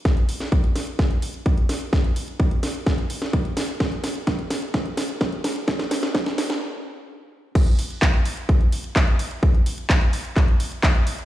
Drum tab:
CC |----------------|----------------|----------------|----------------|
HH |xxoxxxoxxxoxxxox|xxoxxxoxxxoxxxox|xxoxxxoxxxoxxxox|xxoxxxox--------|
CP |----------------|----------------|----------------|----------------|
SD |o--o--o-o-----o-|o-----o-o--o--o-|o-o-o-o-o-o-o-o-|oooooooo--------|
BD |o---o---o---o---|o---o---o---o---|o---o---o---o---|o---o-----------|

CC |x---------------|----------------|
HH |xxoxxxoxxxoxxxox|xxoxxxoxxxoxxxox|
CP |----x-------x---|----x---x---x---|
SD |----------------|----------------|
BD |o---o---o---o---|o---o---o---o---|